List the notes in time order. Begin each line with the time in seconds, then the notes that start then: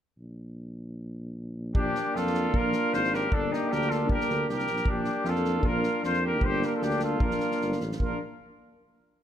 0.18 A#1
1.75 A#1 A#3 D4 G4, kick
1.95 snare
2.15 F2 F4 A4, snare
2.26 snare
2.34 snare
2.54 A#1 F4 A#4, kick
2.72 snare
2.93 G#1 F4 C5, snare
3.04 snare
3.14 G4 A#4, snare
3.32 G1 A#3 D4 A4, kick
3.52 D#4 G4, snare
3.70 D2 G4 A#4, snare
3.81 snare
3.90 F4 A4, snare
4.09 G1 G4 A#4, kick
4.20 snare
4.29 D2, snare
4.48 C2 G4, snare
4.53 A#4
4.58 snare
4.67 A#1, snare
4.76 snare
4.86 A#1 A#3 D4, kick
4.90 G4
5.04 snare
5.24 F2 F4, snare
5.29 A4
5.35 snare
5.44 snare
5.63 A#1 F4 A#4, kick
5.83 snare
6.03 F2 F4 C5, snare
6.13 snare
6.24 G4 A#4
6.41 G1 A#3 D4 C5, kick
6.46 G4
6.62 G4 A#4, snare
6.76 F4 A4
6.82 D2 D4 G4, snare
6.90 snare
6.99 A4, snare
7.04 F4
7.20 A#1 A#3 D4 A#4, kick
7.26 F4
7.31 snare
7.40 snare
7.51 snare
7.61 G1, snare
7.72 snare
7.80 A1, snare
7.92 snare
8.00 A#1 A#3 D4 F4 A#4, kick